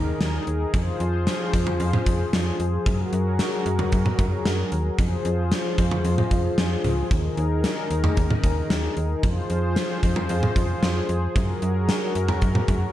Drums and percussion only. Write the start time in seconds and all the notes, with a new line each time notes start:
0.21 snare, closed hi-hat
0.47 closed hi-hat
0.74 kick, closed hi-hat
1.00 closed hi-hat
1.27 snare, closed hi-hat
1.53 kick, closed hi-hat
1.67 mid tom
1.80 closed hi-hat
1.93 mid tom
2.06 kick, closed hi-hat
2.33 snare, closed hi-hat
2.60 closed hi-hat
2.86 kick, closed hi-hat
3.13 closed hi-hat
3.39 snare, closed hi-hat
3.66 closed hi-hat
3.79 mid tom
3.92 kick, closed hi-hat
4.06 mid tom
4.19 kick, closed hi-hat, mid tom
4.45 snare, closed hi-hat
4.72 closed hi-hat
4.98 kick, closed hi-hat
5.25 closed hi-hat
5.52 snare, closed hi-hat
5.78 kick, closed hi-hat
5.91 mid tom
6.05 closed hi-hat
6.18 mid tom
6.31 kick, closed hi-hat
6.58 snare, closed hi-hat
6.84 closed hi-hat, mid tom
7.11 kick, closed hi-hat
7.37 closed hi-hat
7.64 snare, closed hi-hat
7.91 closed hi-hat
8.04 mid tom
8.17 kick, closed hi-hat
8.30 mid tom
8.44 kick, closed hi-hat
8.70 snare, closed hi-hat
8.97 closed hi-hat
9.23 kick, closed hi-hat
9.50 closed hi-hat
9.76 snare, closed hi-hat
10.03 kick, closed hi-hat
10.16 mid tom
10.29 closed hi-hat
10.43 mid tom
10.56 kick, closed hi-hat
10.83 snare, closed hi-hat
11.09 closed hi-hat
11.36 kick, closed hi-hat
11.62 closed hi-hat
11.89 snare, closed hi-hat
12.15 closed hi-hat
12.28 mid tom
12.42 kick, closed hi-hat
12.55 mid tom
12.68 kick, closed hi-hat, mid tom